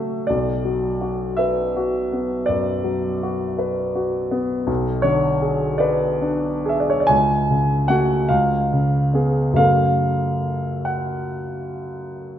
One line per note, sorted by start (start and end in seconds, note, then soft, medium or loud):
0.00 0.29 F#3 soft
0.00 0.28 A3 soft
0.00 0.30 F#4 soft
0.00 0.30 A4 soft
0.00 0.27 E5 medium
0.27 2.46 B1 soft
0.27 1.39 D5 medium
0.65 1.24 F#3 soft
1.01 1.61 F#4 soft
1.37 1.98 B4 soft
1.37 2.48 E5 medium
1.76 2.35 F#4 soft
2.12 2.71 B3 soft
2.46 3.07 F#2 soft
2.46 4.31 D5 medium
2.84 3.43 F#3 soft
3.23 3.82 F#4 soft
3.59 4.18 B4 soft
3.95 4.54 F#4 soft
4.31 4.68 B3 soft
4.67 7.07 B1 soft
5.02 5.66 D3 soft
5.02 5.80 C#5 medium
5.42 6.06 G#4 soft
5.78 6.48 B4 soft
5.78 6.70 D5 medium
6.22 6.94 D4 soft
6.66 7.11 G#4 soft
6.66 6.81 E5 soft
6.80 6.91 D5 soft
6.90 7.01 C#5 medium
7.00 7.11 D5 soft
7.07 8.26 C#2 soft
7.07 7.89 G#5 medium
7.50 8.14 C#3 soft
7.88 8.26 A3 soft
7.88 8.26 F#4 soft
7.88 8.29 F#5 medium
8.29 9.54 C#2 soft
8.29 9.55 F5 medium
8.73 9.41 C#3 soft
9.14 9.54 B3 soft
9.14 9.55 G#4 soft
9.53 12.39 F#2 soft
9.53 12.39 C#3 soft
9.53 12.39 A3 soft
9.53 10.87 F5 medium
9.57 12.39 A4 soft
10.85 12.39 F#5 soft